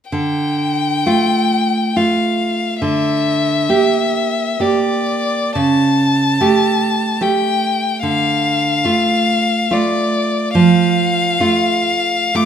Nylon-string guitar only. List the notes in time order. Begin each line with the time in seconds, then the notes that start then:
0.12 D3
1.06 A3 F4
1.96 A3 F4
2.82 D3
3.69 A#3 G4
4.60 A#3 G4
5.55 C#3
6.40 A3 G4
7.21 A3 G4
8.03 D3
8.84 A3 F4
9.71 A3 F4
10.55 F3
11.40 A3 F4
12.35 A3 F4